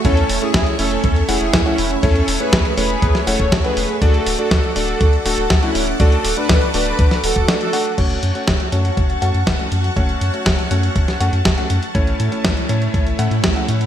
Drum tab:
CC |----------------|----------------|----------------|----------------|
HH |xxoxxxoxxxo-xxox|xxoxxxoxxxoxxxox|xxoxxxoxxxoxxxox|xxoxxxoxxxoxxxox|
SD |----o-------o---|----o----o--o---|----o-------o---|----o----o--o---|
BD |o---o---o---o---|o---o---o--oo---|o---o---o---o---|o---o---o--o----|

CC |x---------------|----------------|----------------|
HH |xxxxxxxxxxxxxxxx|xxxxxxxxxxxxxxxx|xxxxxxxxxxxxxxxx|
SD |----o-------o---|----o----o--o---|----o-------o---|
BD |o---o---o---o---|o---o---o---o---|o---o---o---o---|